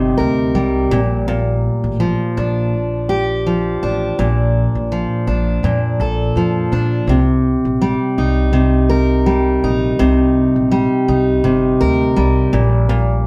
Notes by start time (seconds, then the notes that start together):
Already playing: G1 C3 G3 D#4 A#4
0.17 D2 A#4
0.55 C2 G3
0.91 A#1 A#2
1.28 A#2
1.84 A1
2.00 F3
2.37 A#1 D4
3.09 G4
3.46 F3
3.83 A1 D4
4.19 A#1 A#2
4.75 A#1
4.92 F3
5.27 A#1 D4
5.63 F2 A#2
6.00 A#1 A4
6.36 F2 F3
6.72 A#1 D4
7.07 C2 C3
7.65 A#1
7.81 G3
8.18 C2 D#4
8.53 C3
8.89 A#4
9.26 G3
9.64 A#1 D#4
9.99 C2 C3
10.56 A#1
10.71 G3
11.08 C2 D#4
11.44 G1 C3
11.81 D2 A#4
12.16 C2 G3
12.53 A#1 A#2
12.89 A#2